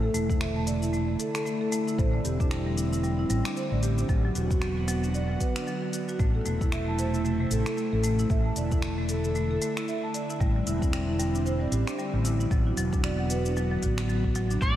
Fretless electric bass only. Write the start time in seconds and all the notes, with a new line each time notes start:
0.14 E1
1.99 A1
2.25 E1
3.30 A1
3.72 A1
4.09 A1
4.36 E1
6.20 A1
6.46 E1
7.51 A1
7.93 A1
8.30 A1
8.56 E1
10.40 A1
10.67 E1
11.72 A1
12.14 A1
12.51 A1
12.77 E1
13.83 A1
14.61 A1